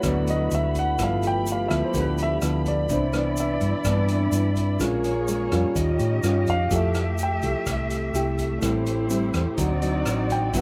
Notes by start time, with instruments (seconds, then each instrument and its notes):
Already playing: string section A3 F#4 B5, vibraphone E4 A4 B4 F#5
0.03 fingered electric bass D2, nylon-string guitar D3 F#3 B3 E4, grand piano C#5, kick, cross-stick, closed hi-hat, shaker
0.08 grand piano D5
0.27 grand piano D#5, closed hi-hat, shaker
0.51 fingered electric bass D2, grand piano E5, closed hi-hat, shaker
0.75 grand piano F#5, kick, closed hi-hat, shaker
0.95 fingered electric bass G1, nylon-string guitar G2 F3, string section A3 G4, vibraphone A4 B4 E5, kick, cross-stick, closed hi-hat, shaker
0.99 nylon-string guitar B3 E4, vibraphone F4
1.03 grand piano F5
1.23 closed hi-hat, shaker
1.27 grand piano G5
1.47 closed hi-hat, shaker
1.52 grand piano F5
1.68 fingered electric bass D2, nylon-string guitar F3 B3 E4, grand piano E5, kick, cross-stick, closed hi-hat, shaker
1.84 grand piano C5
1.93 fingered electric bass D2, nylon-string guitar D3, grand piano A#4, kick, closed hi-hat, shaker
2.00 grand piano B4
2.18 closed hi-hat, shaker
2.23 grand piano E5
2.42 fingered electric bass D2, nylon-string guitar F3 B3 E4, cross-stick, closed hi-hat, shaker
2.65 grand piano D5, kick, closed hi-hat, shaker
2.86 fingered electric bass C2, nylon-string guitar C3 E3 B3, vibraphone D4 B5, string section E4 D5, kick, closed hi-hat, shaker
2.91 vibraphone C4 E5, nylon-string guitar D4, grand piano C5
3.13 nylon-string guitar E3 B3 D4, cross-stick, closed hi-hat, shaker
3.37 grand piano E5, closed hi-hat, shaker
3.61 fingered electric bass G2, kick, closed hi-hat, shaker
3.84 fingered electric bass G2, nylon-string guitar G2 E3 B3 D4, kick, cross-stick, closed hi-hat, shaker
4.06 vibraphone C4 D4 B4 E5, closed hi-hat, shaker
4.31 fingered electric bass G2, closed hi-hat, shaker
4.56 kick, closed hi-hat, shaker
4.77 fingered electric bass A#1, nylon-string guitar A#2 G#3, string section A#3 G#4 C#5, vibraphone F4 A#4 C#5, kick, cross-stick, closed hi-hat, shaker
4.81 nylon-string guitar C#4 F4, vibraphone G#5
5.04 closed hi-hat, shaker
5.28 nylon-string guitar G#3 C#4 F4, closed hi-hat, shaker
5.52 fingered electric bass F2, nylon-string guitar G3 C#4 F4, kick, cross-stick, closed hi-hat, shaker
5.72 string section C#4 G4, vibraphone F4 C#5, kick
5.76 fingered electric bass D#2, nylon-string guitar D#3, vibraphone D#5 G5, string section D#5, closed hi-hat, shaker
5.99 fingered electric bass A2, closed hi-hat, shaker
6.23 fingered electric bass G2, nylon-string guitar G3 C#4 F4, cross-stick, closed hi-hat, shaker
6.47 fingered electric bass F2, grand piano F5, kick, closed hi-hat, shaker
6.69 fingered electric bass F2, nylon-string guitar F3 A3 E4 G4, string section A3 E5, vibraphone A4 E5 G5, kick, closed hi-hat, shaker
6.76 grand piano E5
6.94 cross-stick, closed hi-hat, shaker
7.18 closed hi-hat, shaker
7.23 grand piano G5
7.42 fingered electric bass C2, nylon-string guitar A3 E4 G4, kick, closed hi-hat, shaker
7.66 fingered electric bass C2, nylon-string guitar C3, kick, cross-stick, closed hi-hat, shaker
7.90 closed hi-hat, shaker
8.13 fingered electric bass C2, nylon-string guitar A3 E4 G4, closed hi-hat, shaker
8.38 kick, closed hi-hat, shaker
8.60 fingered electric bass A1, nylon-string guitar A2 G3 C4 E4, vibraphone E4 A4 C5, string section E4 G4 C5, kick, cross-stick, closed hi-hat, shaker
8.65 vibraphone G5
8.86 closed hi-hat, shaker
9.10 nylon-string guitar G3 C4 E4, closed hi-hat, shaker
9.34 fingered electric bass E2, kick, cross-stick, closed hi-hat, shaker
9.55 fingered electric bass D2, nylon-string guitar D3 F#3 C4 D#4, string section C4 D#4 F#4 D5, vibraphone D#4 C5 D5, kick, closed hi-hat, shaker
9.61 vibraphone F#5
9.82 nylon-string guitar F#3 C4 D#4, closed hi-hat, shaker
10.05 fingered electric bass A1, cross-stick, closed hi-hat, shaker
10.30 grand piano G5, kick, closed hi-hat, shaker
10.51 fingered electric bass G1, nylon-string guitar G2 F#3 B3 E4, string section F#3 A3 E4 B4, vibraphone E4 A4 B4, kick, closed hi-hat, shaker
10.57 vibraphone E5, grand piano F#5